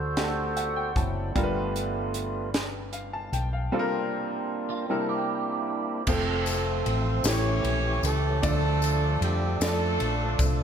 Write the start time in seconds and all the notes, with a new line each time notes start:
Already playing: D2 D3 A3 D4 F#4 A4 C5
0.17 A3 D4 F#4 G4, snare, closed hi-hat
0.24 A4
0.57 F#5, closed hi-hat
0.76 G5
0.96 F#1 F#3 C4 E4 A5, kick, closed hi-hat
1.35 G1 G2 G3 A3 B3 D4 F4 A#4, kick, closed hi-hat
1.43 B4
1.76 closed hi-hat
2.14 closed hi-hat
2.54 snare, closed hi-hat
2.93 F5, closed hi-hat
3.13 A5
3.32 B1 G5, closed hi-hat
3.53 F5
3.72 C3 G3 A#3 C4 D4 F4 A4
3.79 A#4
4.70 F4
4.88 C3 G3 A#3 C4 D4 E4 A4 A#4
5.09 G4
6.07 F1 F3 A3 C4 F4 G#4 A4 C5, kick, crash, tambourine
6.14 A4
6.46 ride, tambourine
6.86 A1 C4 C5, ride
7.24 A1 A2 E3 A3 C#4 E4 G4 C5 C#5, snare, ride, tambourine
7.28 E4
7.32 C#5
7.64 A#1, ride
8.03 C#2 A3 A4, ride, tambourine
8.42 D2 D3 F3 A3 D4 F4 A4 D5, kick, ride, tambourine
8.82 ride, tambourine
9.21 F2 G3 G4, ride
9.61 F2 A3 D4 F4 A4 D5, snare, ride, tambourine
10.00 A#1, ride
10.39 C2, kick, ride, tambourine